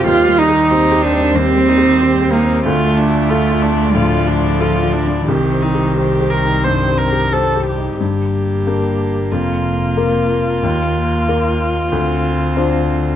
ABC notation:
X:1
M:4/4
L:1/8
Q:1/4=92
K:Cdor
V:1 name="String section"
[G,Gc]8 | [A,Fd]8 | [G,Gc]8 | z8 |
z8 |]
V:2 name="Viola"
G E G E G E G E | F D F D F D F D | G E G B c B A G | G4 F4- |
F8 |]
V:3 name="Felt piano"
(3E,, G, G (3C G C (3E,, G, G (3C G C | (3D,, A, F (3A F D (3A,, A, F (3A F D | (3C,, C G (3c G E (3G,, C G (3c G E | G,,2 [B,DG]2 F,,2 [B,FB]2 |
E,,2 [B,FB]2 D,,2 [DFc]2 |]
V:4 name="Cello"
F E2 D C3 B, | A,4 F,4 | E,6- E, z | B,8- |
B,4 C4 |]
V:5 name="Double bass" clef=bass
E,,8 | D,,8 | C,,8 | G,,,4 F,,,4 |
E,,4 D,,4 |]